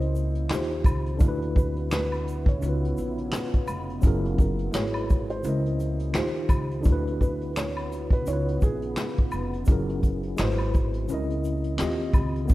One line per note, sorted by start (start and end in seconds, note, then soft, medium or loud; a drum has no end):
0.00 0.46 C#2 loud
0.00 0.49 C#3 medium
0.00 0.50 C#4 medium
0.00 0.51 E4 medium
0.00 0.52 A#4 medium
0.00 1.17 C5 medium
0.00 0.52 D#5 medium
0.00 closed hi-hat soft
0.15 closed hi-hat medium
0.15 shaker soft
0.35 closed hi-hat medium
0.49 0.82 D#2 medium
0.49 1.20 D#3 medium
0.49 1.20 D#4 medium
0.49 1.21 F4 medium
0.49 finger snap medium
0.49 snare loud
0.49 shaker medium
0.53 1.22 G4 medium
0.53 1.23 C5 medium
0.71 closed hi-hat soft
0.84 1.17 C#2 medium
0.84 kick loud
0.84 closed hi-hat medium
0.84 high woodblock medium
0.84 shaker medium
1.06 closed hi-hat soft
1.16 2.57 D3 medium
1.16 2.58 D4 medium
1.16 shaker medium
1.20 2.58 D2 loud
1.20 2.60 D3 medium
1.20 4.00 B3 medium
1.20 2.61 E4 medium
1.20 2.59 E4 medium
1.20 2.60 F#4 medium
1.20 kick loud
1.20 closed hi-hat medium
1.25 2.61 F#4 medium
1.25 2.63 B4 medium
1.42 closed hi-hat soft
1.55 1.88 B4 medium
1.55 kick medium
1.55 closed hi-hat medium
1.55 shaker soft
1.76 closed hi-hat soft
1.91 2.44 B4 medium
1.91 finger snap medium
1.91 snare loud
1.91 shaker medium
2.12 closed hi-hat soft
2.12 high woodblock medium
2.27 closed hi-hat medium
2.27 shaker soft
2.46 4.00 C#5 medium
2.46 kick medium
2.46 closed hi-hat medium
2.57 3.98 C#3 medium
2.57 3.99 C#4 medium
2.62 2.94 C#2 loud
2.62 4.02 C#3 medium
2.62 4.01 D#4 medium
2.62 4.02 D#4 medium
2.62 4.02 F4 medium
2.62 closed hi-hat medium
2.62 shaker medium
2.69 4.04 B4 medium
2.85 closed hi-hat soft
2.97 3.29 A#1 medium
2.97 closed hi-hat medium
2.97 shaker soft
3.18 closed hi-hat soft
3.32 finger snap medium
3.32 snare loud
3.32 shaker medium
3.53 kick medium
3.53 closed hi-hat soft
3.67 4.00 F1 medium
3.67 closed hi-hat medium
3.67 high woodblock medium
3.67 shaker medium
3.90 closed hi-hat soft
4.01 4.70 F#1 loud
4.01 4.73 F#3 medium
4.01 4.73 C#4 medium
4.01 4.72 E4 medium
4.01 kick loud
4.01 closed hi-hat medium
4.01 shaker medium
4.06 4.75 G#4 medium
4.06 4.76 A#4 medium
4.25 closed hi-hat soft
4.38 4.70 A#4 medium
4.38 kick medium
4.38 closed hi-hat medium
4.38 shaker soft
4.59 closed hi-hat soft
4.71 5.40 G#1 medium
4.71 5.43 G#3 medium
4.71 5.44 E4 medium
4.71 5.44 F#4 medium
4.71 5.26 C#5 medium
4.71 finger snap medium
4.71 snare loud
4.71 shaker medium
4.76 5.46 G#4 medium
4.76 5.45 B4 medium
4.94 closed hi-hat soft
4.94 high woodblock medium
5.10 kick medium
5.10 closed hi-hat medium
5.10 shaker soft
5.30 6.82 C5 medium
5.30 closed hi-hat soft
5.42 6.11 C#2 loud
5.42 6.14 C#3 medium
5.42 6.14 C#4 medium
5.42 6.15 E4 medium
5.42 closed hi-hat medium
5.42 shaker medium
5.47 6.16 A#4 medium
5.47 6.17 D#5 medium
5.66 closed hi-hat soft
5.80 closed hi-hat medium
5.80 shaker soft
5.99 closed hi-hat medium
6.13 6.47 D#2 medium
6.13 6.84 D#3 medium
6.13 6.85 D#4 medium
6.13 6.86 F4 medium
6.13 finger snap medium
6.13 snare loud
6.13 shaker medium
6.17 6.86 G4 medium
6.17 6.87 C5 medium
6.35 closed hi-hat soft
6.48 6.81 C#2 medium
6.48 kick loud
6.48 closed hi-hat medium
6.48 high woodblock medium
6.48 shaker medium
6.71 closed hi-hat soft
6.80 8.21 D3 medium
6.80 9.64 B3 medium
6.80 8.22 D4 medium
6.80 shaker medium
6.85 8.23 D2 loud
6.85 8.25 D3 medium
6.85 8.25 E4 medium
6.85 8.24 E4 medium
6.85 8.25 F#4 medium
6.85 kick loud
6.85 closed hi-hat medium
6.89 8.25 F#4 medium
6.89 8.27 B4 medium
7.07 closed hi-hat soft
7.21 7.53 B4 medium
7.21 kick medium
7.21 closed hi-hat medium
7.21 shaker soft
7.41 closed hi-hat soft
7.56 8.09 C#5 medium
7.56 finger snap medium
7.56 snare loud
7.56 shaker medium
7.77 closed hi-hat soft
7.77 high woodblock medium
7.92 closed hi-hat medium
7.92 shaker soft
8.10 8.26 B4 medium
8.10 kick medium
8.10 closed hi-hat medium
8.21 9.62 C#3 medium
8.21 9.63 C#4 medium
8.26 8.59 C#2 loud
8.26 9.66 C#3 medium
8.26 9.66 D#4 medium
8.26 9.65 D#4 medium
8.26 9.66 F4 medium
8.26 9.67 F4 medium
8.26 8.59 C#5 medium
8.26 closed hi-hat medium
8.26 shaker medium
8.33 9.68 B4 medium
8.48 closed hi-hat soft
8.61 8.94 A#1 medium
8.61 9.15 G#4 medium
8.61 kick medium
8.61 closed hi-hat medium
8.61 shaker soft
8.82 closed hi-hat medium
8.96 finger snap medium
8.96 snare medium
8.96 shaker medium
9.17 kick medium
9.17 closed hi-hat soft
9.31 9.65 F1 medium
9.31 closed hi-hat medium
9.31 high woodblock medium
9.31 shaker medium
9.53 closed hi-hat soft
9.66 10.34 F#1 medium
9.66 10.38 F#3 medium
9.66 10.38 C#4 medium
9.66 10.37 E4 medium
9.66 kick loud
9.66 closed hi-hat medium
9.66 shaker medium
9.71 10.40 G#4 medium
9.71 10.40 A#4 medium
9.89 closed hi-hat soft
10.03 kick medium
10.03 closed hi-hat medium
10.03 shaker soft
10.23 closed hi-hat soft
10.37 11.05 G#1 medium
10.37 11.08 G#3 medium
10.37 11.09 E4 medium
10.37 11.09 F#4 medium
10.37 finger snap medium
10.37 snare loud
10.37 shaker medium
10.41 11.10 B4 medium
10.41 11.11 C5 medium
10.58 closed hi-hat soft
10.58 high woodblock medium
10.73 kick medium
10.73 closed hi-hat medium
10.73 shaker soft
10.94 closed hi-hat soft
11.08 11.76 C#2 medium
11.08 11.79 C#3 medium
11.08 11.80 C#4 medium
11.08 11.80 E4 medium
11.08 closed hi-hat medium
11.08 shaker medium
11.12 11.81 A#4 medium
11.12 11.82 D#5 medium
11.30 closed hi-hat soft
11.44 closed hi-hat medium
11.44 shaker soft
11.64 closed hi-hat medium
11.77 12.12 D#2 loud
11.77 12.49 D#3 medium
11.77 12.49 C4 medium
11.77 12.50 F4 medium
11.77 finger snap medium
11.77 snare loud
11.77 shaker medium
11.81 12.51 G4 medium
11.81 12.52 D#5 medium
12.00 closed hi-hat soft
12.13 12.46 C#2 medium
12.13 kick loud
12.13 closed hi-hat medium
12.13 high woodblock medium
12.13 shaker medium
12.36 closed hi-hat soft
12.45 12.54 D3 medium
12.45 12.54 B3 medium
12.45 shaker medium
12.50 12.54 D2 loud
12.50 12.54 E4 medium
12.50 kick loud
12.50 closed hi-hat medium